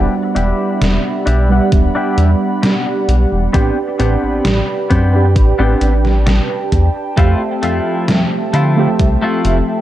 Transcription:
Already playing: G3 B3 D4 E4 G4 D5 E5 F#5 B5
0.35 E1 D4 E4 G4, closed hi-hat
0.81 E1, snare, closed hi-hat
1.26 B1 D4 E4 G4, closed hi-hat
1.49 G3 B3 D4 F#5
1.72 D1 F#5, kick, closed hi-hat
1.95 D4 E4 G4
2.18 E2, closed hi-hat
2.62 muted clean electric guitar stroke, snare, closed hi-hat
2.86 muted clean electric guitar stroke
3.08 B1, closed hi-hat
3.32 E1
3.53 A1 B3 C4 D4 G4 B4 G5 B5, kick, closed hi-hat
3.99 A1 B3 C4 D4 G4, closed hi-hat
4.23 A1
4.45 A1, snare, closed hi-hat
4.90 F#2 B3 C4 D4 G4, kick, closed hi-hat
5.13 D4 G4 B4
5.36 A1 A5, kick, closed hi-hat
5.59 A1 B3 C4 D4 G4
5.81 A1, closed hi-hat
6.05 snare
6.26 muted clean electric guitar stroke, snare, closed hi-hat
6.50 muted clean electric guitar stroke
6.72 E2, kick, closed hi-hat
7.16 F2 F3 A3 C4 E4 F4 G4 E5, kick, closed hi-hat
7.63 F2 A3 E4 F4, closed hi-hat
8.08 F2, snare, closed hi-hat
8.53 D3 A3 E4 F4, closed hi-hat
8.76 A3 C4 G4 E5
8.99 C2, kick, closed hi-hat
9.22 A3 E4 F4
9.45 F1, closed hi-hat

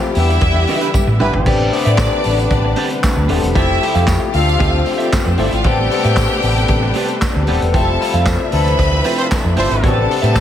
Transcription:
Already playing: C3 F3 G3 A3 C4 E4 G4
0.03 muted clean electric guitar stroke
0.15 E2 D3 E3 G3 B3 D4 E4 G4 E5, open hi-hat
0.29 muted clean electric guitar stroke, closed hi-hat
0.41 E2, kick, closed hi-hat
0.56 muted clean electric guitar stroke
0.67 D4 G4 B4 E5, open hi-hat
0.81 E4 G4 B4, muted clean electric guitar stroke, closed hi-hat
0.94 E5, kick, high tom, tambourine
1.07 A2, muted clean electric guitar stroke
1.20 G1 E3 G3 B3 D4 E4 G4 B4 D5 E5, mid tom
1.33 G#1, muted clean electric guitar stroke, floor tom
1.45 A1 C3 D3 G3 A3 B3 C4 D4 G4 B4 D5, kick, crash
1.72 D3 A3 B3 C4 G4, muted clean electric guitar stroke, open hi-hat
1.85 A2 C4 G4 B4 E5, closed hi-hat
1.98 muted clean electric guitar stroke, kick, snare, clap, closed hi-hat, tambourine
2.12 muted clean electric guitar stroke
2.24 A1, open hi-hat
2.38 muted clean electric guitar stroke, closed hi-hat
2.50 A1, kick, closed hi-hat
2.65 muted clean electric guitar stroke
2.76 C4 G4 B4 D5, open hi-hat
2.90 muted clean electric guitar stroke, closed hi-hat
3.03 kick, snare, clap, closed hi-hat, tambourine
3.16 D2, muted clean electric guitar stroke
3.28 D#1 D3 A3 B3 C4 G4 B4 D5, open hi-hat
3.42 E1, muted clean electric guitar stroke, closed hi-hat
3.54 F1 F3 A3 C4 E4 G4 A4 E5, kick, closed hi-hat
3.81 F3 A3 C4 E4 G4, muted clean electric guitar stroke, open hi-hat
3.94 F2 C4 G4 A4 F5, closed hi-hat
4.07 muted clean electric guitar stroke, kick, snare, clap, closed hi-hat, tambourine
4.20 muted clean electric guitar stroke
4.34 D2 D3 F3 C4 D4 F4 A4 F5, open hi-hat
4.46 muted clean electric guitar stroke, closed hi-hat
4.59 D2 C4 F4 A4 E5, kick, closed hi-hat
4.72 muted clean electric guitar stroke
4.86 muted clean electric guitar stroke, open hi-hat
4.98 C4 F4 A4 E5, closed hi-hat
5.03 G3 G4
5.12 A3 A4, kick, snare, clap, closed hi-hat, tambourine
5.21 B3 B4
5.26 F2 C4 C5, muted clean electric guitar stroke
5.37 G1 F3 C4 D4 E4 F4 A4 D5 E5, open hi-hat
5.47 E4 E5
5.52 G#1 F4 F5, muted clean electric guitar stroke, closed hi-hat
5.64 A1 C3 G3 B3 C4 D4 G4 A4 B4 D5 G5, kick, closed hi-hat
5.91 G3 B3 C4 D4 A4, open hi-hat
6.04 A2 C4 G4 B4 E5, closed hi-hat
6.16 muted clean electric guitar stroke, kick, snare, clap, closed hi-hat, tambourine
6.31 muted clean electric guitar stroke
6.42 A1, open hi-hat
6.57 muted clean electric guitar stroke, closed hi-hat
6.68 A1, kick, closed hi-hat
6.83 muted clean electric guitar stroke
6.94 C4 G4 B4, open hi-hat
6.98 D5
7.08 muted clean electric guitar stroke, closed hi-hat
7.22 kick, snare, clap, closed hi-hat, tambourine
7.36 D2, muted clean electric guitar stroke
7.47 D#1 G3 B3 C4 D4 G4 A4 B4 D5, open hi-hat
7.62 E1, muted clean electric guitar stroke, closed hi-hat
7.73 F1 C3 F3 G3 C4 E4 F4 G4 A4 E5 A5, kick, closed hi-hat
8.00 G3 C4 E4 F4 A4, muted clean electric guitar stroke, open hi-hat
8.14 F2 C4 G4 A4 F5, closed hi-hat
8.26 kick, snare, clap, closed hi-hat, tambourine
8.40 muted clean electric guitar stroke
8.52 D2 F3 C4 D4 E4 A4 B4 B5, open hi-hat
8.66 muted clean electric guitar stroke, closed hi-hat
8.79 D2, kick, closed hi-hat
8.92 muted clean electric guitar stroke
9.04 C4 F4 A4 E5, open hi-hat
9.18 F4 A4 C5, muted clean electric guitar stroke, closed hi-hat
9.31 kick, snare, clap, closed hi-hat, tambourine
9.44 F2, muted clean electric guitar stroke
9.56 G1 F3 C4 D4 E4 F4 G4 A4 C5 E5, open hi-hat
9.70 G#1, muted clean electric guitar stroke, closed hi-hat
9.83 A1 G3 B3 C4 D4 G4 A4 B4 D5 A5, kick, closed hi-hat
10.09 G3 B3 C4 D4 A4, open hi-hat
10.22 A2 C4 G4 B4 E5, closed hi-hat
10.36 muted clean electric guitar stroke, kick, snare, clap, closed hi-hat, tambourine

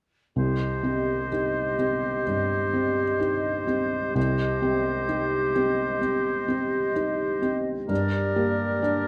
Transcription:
0.36 C2 G4 C5 D#5
0.83 C4 G4
1.32 D#4 G4
1.79 C4 G4
2.27 G2
2.73 C4 G4
3.20 D#4 G4
3.67 C4 G4
4.15 C2 G4 C5 D#5
4.62 C4 G4
5.09 D#4 G4
5.55 C4 G4
6.01 C4
6.48 C4 G4
6.95 D#4 G4
7.42 C4 G4
7.88 G2 G4 A#4 D5
8.36 A#3 G4
8.83 D4 G4

